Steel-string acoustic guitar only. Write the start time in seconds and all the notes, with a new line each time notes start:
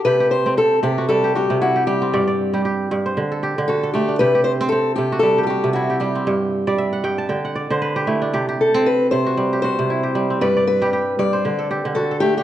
0.05 B4
0.31 C5
0.58 A4
0.83 G4
1.09 A4
1.36 G4
1.61 F#4
1.87 G4
3.68 A4
3.93 G4
4.19 B4
4.44 C5
4.69 A4
4.96 G4
5.19 A4
5.43 G4 A4
5.73 F#4
6.00 G4
8.61 A4
8.86 B4
9.11 C5
9.62 C5
10.41 B4
10.67 B4
11.19 D5
11.95 A4
12.20 G4
12.38 G4